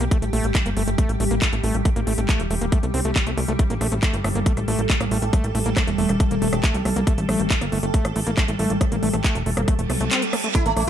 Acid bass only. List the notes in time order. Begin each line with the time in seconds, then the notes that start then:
0.01 A#3
0.11 A3
0.22 A3
0.33 A3
0.44 A#3
0.55 A3
0.66 A#3
0.77 A3
0.88 A3
0.98 A3
1.09 A#3
1.20 A3
1.31 A#3
1.42 A3
1.53 A3
1.64 A3
1.74 A#3
1.85 A3
1.96 A#3
2.07 A3
2.18 A3
2.29 A3
2.40 A#3
2.51 A3
2.61 A#3
2.72 A3
2.83 A3
2.94 C4
3.05 A3
3.16 A#3
3.27 A3
3.37 A3
3.48 A3
3.59 A3
3.70 A#3
3.81 A3
3.92 A3
4.03 A3
4.14 A#3
4.24 A3
4.35 A#3
4.46 A3
4.57 A3
4.68 A3
4.79 A#3
4.90 A3
5.01 A#3
5.11 A3
5.22 A3
5.33 A3
5.44 A#3
5.55 A3
5.66 A#3
5.77 A3
5.88 A3
5.98 A3
6.09 A#3
6.20 A3
6.31 A#3
6.42 A3
6.53 A3
6.64 A3
6.74 A#3
6.85 A3
6.96 A#3
7.07 A3
7.18 A3
7.29 A3
7.40 A#3
7.51 A3
7.61 A#3
7.72 A3
7.83 A3
7.94 A3
8.05 A#3
8.16 A3
8.27 A#3
8.37 A3
8.48 A3
8.59 A3
8.70 A#3
8.81 A3
8.92 A#3
9.03 A3
9.14 A3
9.24 A3
9.35 A#3
9.46 A3
9.57 A#3
9.68 A3
9.79 A3
9.90 A3
10.00 A3
10.11 C4
10.22 G3
10.33 A#3
10.44 A3
10.55 A3
10.66 A#3
10.77 A3